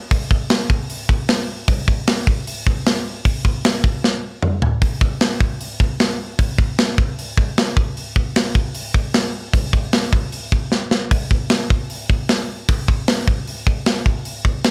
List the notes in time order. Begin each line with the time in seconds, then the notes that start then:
0.11 kick, open hi-hat
0.31 kick
0.50 snare, open hi-hat
0.70 kick
0.90 open hi-hat
1.09 kick
1.29 snare, open hi-hat
1.68 kick, open hi-hat
1.88 kick
2.07 snare, open hi-hat
2.27 kick
2.47 open hi-hat
2.67 kick
2.86 snare, open hi-hat
3.25 kick, open hi-hat
3.45 kick
3.65 snare, open hi-hat
3.84 kick
4.04 snare
4.42 mid tom
4.62 floor tom
4.82 kick, open hi-hat
5.01 kick
5.21 snare, open hi-hat
5.41 kick
5.61 open hi-hat
5.80 kick
6.00 snare, open hi-hat
6.39 kick, open hi-hat
6.58 kick
6.78 snare, open hi-hat
6.98 kick
7.19 open hi-hat
7.37 kick
7.58 snare, open hi-hat
7.77 kick
7.97 open hi-hat
8.16 kick
8.36 snare, open hi-hat
8.55 kick
8.75 open hi-hat
8.94 kick
9.14 snare, open hi-hat
9.53 kick, open hi-hat
9.73 kick
9.93 snare, open hi-hat
10.13 kick
10.32 open hi-hat
10.52 kick
10.72 snare
10.91 snare
11.11 kick, open hi-hat
11.31 kick
11.50 snare, open hi-hat
11.70 kick
11.90 open hi-hat
12.10 kick
12.29 snare, open hi-hat
12.69 kick, open hi-hat
12.88 kick
13.08 snare, open hi-hat
13.28 kick
13.47 open hi-hat
13.67 kick
13.86 snare, open hi-hat
14.06 kick
14.25 open hi-hat
14.45 kick
14.64 snare, open hi-hat